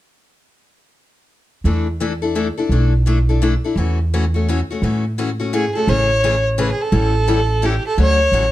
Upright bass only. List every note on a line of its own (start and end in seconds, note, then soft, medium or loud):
1.64 2.49 E2 medium
2.69 3.55 B1 medium
3.76 4.61 E2 medium
4.82 5.66 A2 medium
5.87 6.72 A1 medium
6.92 7.77 A1 medium
7.98 8.26 D2 medium
8.32 8.52 A1 medium